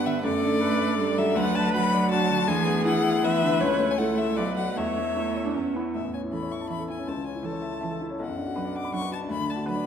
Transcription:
Already playing: G2 B3 D4 G4 B4
0.06 D3 E5
0.23 F#2 A3 A4 D5
0.43 D4
0.60 A4 B4
0.78 D5
0.98 G3 D4 A4
1.18 F#3 E5
1.34 D2 F#3 B4 F#5
1.55 D4 A5
1.73 F#3 F#4 B5
1.93 D5
2.10 D4 F#4 A5
2.30 D3
2.47 D2 E3 G#4 G#5
2.66 B3
2.85 E4 F#5
3.04 E5
3.23 E3 B3 B4 E5
3.43 D3
3.60 C#2 A3 C#5
3.79 A3
3.90 G#5
3.97 E4 A4 F#5
4.18 E5
4.36 B1 F#3 B4 D5
4.56 F#4 D5 F#5
4.75 E2 A3 C#5 E5
4.98 A3
5.16 A3 E4
5.36 C#5
5.45 D4
5.54 E2 C#4
5.74 B3 E4 B4
5.94 A1 E5
6.05 E2
6.14 C#4 G#5
6.23 E4
6.31 E3 C#4 A4 B5
6.42 C#5
6.51 E5 C#6
6.61 A5
6.69 E3 C#4 E5 B5
6.79 A4
6.89 E4 G#5
6.98 C#4
7.07 C#2 A5
7.16 C#3
7.26 C#4 G#5
7.34 E4
7.43 E3 C#4 A4 A5
7.52 C#5
7.62 E5
7.72 A5
7.81 E3 C#4 E5
7.91 A4
8.01 E4
8.10 C#4
8.19 B1 F#5
8.28 F#2
8.37 D4
8.46 F#4
8.55 F#3 D4 B4
8.65 D5
8.75 F#5 D6
8.85 B5
8.92 F#3 D4 F#5 C#6
9.01 B4
9.11 F#4 A5
9.21 D4
9.29 D2 B5
9.39 D3
9.48 D4 A5
9.56 F#4
9.66 F#3 D4 B4 B5
9.75 D5

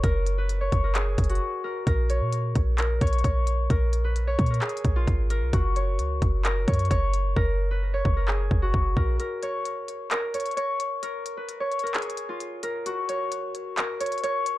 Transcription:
Already playing: F#4 C#5
0.04 F#1 A#4, kick, closed hi-hat
0.26 closed hi-hat
0.38 B4
0.49 closed hi-hat
0.61 C#5
0.72 F#1, kick, closed hi-hat
0.84 A#4
0.95 G#4, clap, closed hi-hat
1.18 F#1, kick, closed hi-hat
1.24 closed hi-hat
1.29 F#4, closed hi-hat
1.35 closed hi-hat
1.64 A#4
1.87 A#1 A#4, kick, closed hi-hat
2.10 C#5, closed hi-hat
2.21 A#2
2.33 closed hi-hat
2.55 A#1, kick, closed hi-hat
2.78 A#4, clap, closed hi-hat
3.01 A#1 C#5, kick, closed hi-hat
3.07 closed hi-hat
3.13 closed hi-hat
3.18 closed hi-hat
3.24 A#1 C#5, kick, closed hi-hat
3.47 closed hi-hat
3.70 A#1 A#4, kick, closed hi-hat
3.93 closed hi-hat
4.04 B4
4.16 closed hi-hat
4.27 C#5
4.39 A#2, kick, closed hi-hat
4.46 closed hi-hat
4.50 A#4, closed hi-hat
4.62 G#4, clap, closed hi-hat
4.69 closed hi-hat
4.77 closed hi-hat
4.84 A#1, kick, closed hi-hat
4.96 F4
5.07 G#1, kick, closed hi-hat
5.30 A#4, closed hi-hat
5.42 B1
5.53 F#1 F#4, kick, closed hi-hat
5.76 C#5, closed hi-hat
5.99 C#2, closed hi-hat
6.22 F#1, kick, closed hi-hat
6.45 A#4, clap, closed hi-hat
6.68 F#2 C#5, kick, closed hi-hat
6.74 closed hi-hat
6.79 closed hi-hat
6.85 closed hi-hat
6.91 F#1 C#5, kick, closed hi-hat
7.14 closed hi-hat
7.36 F#1 A#4, kick
7.71 B4
7.94 C#5
8.05 F#1, kick
8.17 A#4
8.28 G#4, clap
8.51 F#1, kick
8.62 F#4
8.74 F#1, kick
8.97 A#1 A#4, kick
9.20 A#4, closed hi-hat
9.43 C#5, closed hi-hat
9.65 closed hi-hat
9.88 closed hi-hat
10.11 A#4, clap, closed hi-hat
10.34 C#5, closed hi-hat
10.40 closed hi-hat
10.46 closed hi-hat
10.51 closed hi-hat
10.57 C#5, closed hi-hat
10.80 closed hi-hat
11.03 A#4, closed hi-hat
11.26 closed hi-hat
11.37 B4
11.49 closed hi-hat
11.60 C#5
11.72 closed hi-hat
11.79 closed hi-hat
11.83 A#4, closed hi-hat
11.94 G#4, clap, closed hi-hat
12.02 closed hi-hat
12.10 closed hi-hat
12.17 closed hi-hat
12.29 F4
12.40 closed hi-hat
12.63 A#4, closed hi-hat
12.86 F#4, closed hi-hat
13.09 C#5, closed hi-hat
13.32 closed hi-hat
13.55 closed hi-hat
13.78 A#4, clap, closed hi-hat
14.00 C#5, closed hi-hat
14.06 closed hi-hat
14.12 closed hi-hat
14.18 closed hi-hat
14.23 C#5, closed hi-hat
14.46 closed hi-hat

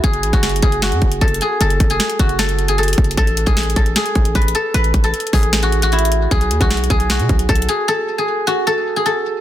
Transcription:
Already playing: E4 F#4 B4
0.04 F#1 G#4, kick, closed hi-hat
0.13 closed hi-hat
0.23 A1, closed hi-hat
0.33 F#1 F#4, kick, closed hi-hat
0.43 snare, closed hi-hat
0.49 closed hi-hat
0.56 closed hi-hat
0.62 F#1 G#4, kick, closed hi-hat
0.72 closed hi-hat
0.82 F#4, snare, closed hi-hat
0.92 F#2, closed hi-hat
1.02 F#1, kick, closed hi-hat
1.12 closed hi-hat
1.21 F#1 A4, kick, closed hi-hat
1.28 closed hi-hat
1.34 closed hi-hat
1.41 G#4, closed hi-hat
1.61 F#1 A4, closed hi-hat
1.70 closed hi-hat
1.80 F#1, kick, closed hi-hat
1.90 G#4, closed hi-hat
2.00 snare, closed hi-hat
2.10 closed hi-hat
2.19 F#1 F#4, kick, closed hi-hat
2.29 closed hi-hat
2.39 A4, snare, closed hi-hat
2.49 closed hi-hat
2.59 closed hi-hat
2.68 G#4, closed hi-hat
2.78 A4, closed hi-hat
2.83 closed hi-hat
2.88 closed hi-hat
2.93 closed hi-hat
2.98 F#1, kick, closed hi-hat
3.04 closed hi-hat
3.11 closed hi-hat
3.17 A1 A4, kick, closed hi-hat
3.27 closed hi-hat
3.37 closed hi-hat
3.46 A1 G#4, kick, closed hi-hat
3.57 snare, closed hi-hat
3.63 closed hi-hat
3.70 closed hi-hat
3.76 A1 A4, kick, closed hi-hat
3.86 closed hi-hat
3.96 G#4, snare, closed hi-hat
4.06 closed hi-hat
4.15 A1, kick, closed hi-hat
4.25 closed hi-hat
4.35 A1 B4, kick, closed hi-hat
4.42 closed hi-hat
4.48 closed hi-hat
4.55 A4, closed hi-hat
4.74 A1 B4, closed hi-hat
4.84 closed hi-hat
4.94 A1, kick, closed hi-hat
5.04 A4, closed hi-hat
5.14 closed hi-hat
5.20 closed hi-hat
5.27 closed hi-hat
5.33 A1 G#4, kick, open hi-hat
5.43 closed hi-hat
5.53 snare, closed hi-hat
5.63 F#4, closed hi-hat
5.72 closed hi-hat
5.82 F#4, closed hi-hat
5.92 E4, closed hi-hat
5.99 closed hi-hat
6.05 closed hi-hat
6.12 closed hi-hat
6.31 B1 G#4, kick, closed hi-hat
6.41 closed hi-hat
6.51 D#2, closed hi-hat
6.61 B1 F#4, kick, closed hi-hat
6.71 snare, closed hi-hat
6.77 closed hi-hat
6.84 closed hi-hat
6.90 B1 G#4, kick, closed hi-hat
7.00 closed hi-hat
7.10 F#4, snare, closed hi-hat
7.19 B2, closed hi-hat
7.29 B1, kick, closed hi-hat
7.39 closed hi-hat
7.49 B1 A4, kick, closed hi-hat
7.55 closed hi-hat
7.62 closed hi-hat
7.69 G#4, closed hi-hat
7.88 A4
8.18 G#4
8.47 F#4
8.67 A4
8.96 G#4
9.06 A4

